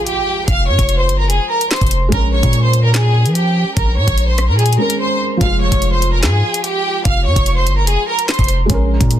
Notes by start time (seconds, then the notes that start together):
Already playing: F3 G#3 F4, impact
0.07 G4 G5, closed hi-hat
0.48 F1 F5 F6, kick, closed hi-hat
0.68 G#2 C#5 C#6
0.79 F1, kick, closed hi-hat
0.89 closed hi-hat
0.99 C5 C6
1.09 G1, closed hi-hat
1.20 A#4 A#5
1.25 F1
1.30 G#4 G#5, closed hi-hat
1.51 A#4 A#5
1.61 closed hi-hat
1.71 C5 C6, snare, clap, closed hi-hat
1.76 closed hi-hat
1.81 F1, kick, closed hi-hat
1.87 closed hi-hat
1.91 closed hi-hat
2.09 A#1 G#3 C#4 A#4, kick, closed hi-hat
2.13 A#4 A#5
2.33 C#5 C#6
2.43 A#2, kick, closed hi-hat
2.53 closed hi-hat
2.64 C5 C6
2.73 closed hi-hat
2.84 A#4 A#5
2.94 G#4 G#5, snare, clap, closed hi-hat
3.25 F3, closed hi-hat
3.35 G4 G5, closed hi-hat
3.76 A#1 A#4 A#5, kick, closed hi-hat
3.97 A#2 C#5 C#6
4.08 A#1, kick, closed hi-hat
4.18 closed hi-hat
4.28 C5 C6
4.38 cross-stick, closed hi-hat
4.49 A#2 A#4 A#5
4.59 G#4 G#5, closed hi-hat
4.66 closed hi-hat
4.73 closed hi-hat
4.77 G#3 C#4 A#4 A#5
4.90 closed hi-hat
5.00 C5 C6
5.37 F3 G#3 F5
5.41 F1 F4 F6, kick, closed hi-hat
5.61 C#5 C#6
5.72 F1, kick, closed hi-hat
5.82 closed hi-hat
5.92 C5 C6
6.02 closed hi-hat
6.13 A#4 A#5
6.23 G#2 G#4 G#5, snare, clap, closed hi-hat
6.54 closed hi-hat
6.64 G4 G5, closed hi-hat
7.05 F1 F5 F6, kick, closed hi-hat
7.26 G#2 C#5 C#6
7.36 F1, kick, closed hi-hat
7.46 closed hi-hat
7.57 C5 C6
7.67 G1, closed hi-hat
7.77 A#4 A#5
7.82 F1
7.87 G#4 G#5, closed hi-hat
8.08 A#4 A#5
8.19 closed hi-hat
8.28 C5 C6, snare, clap, closed hi-hat
8.34 closed hi-hat
8.39 F1, kick, closed hi-hat
8.44 closed hi-hat
8.48 closed hi-hat
8.66 A#1 G#3 C#4, kick, closed hi-hat
8.74 A#4
9.01 A#2, kick, closed hi-hat
9.11 closed hi-hat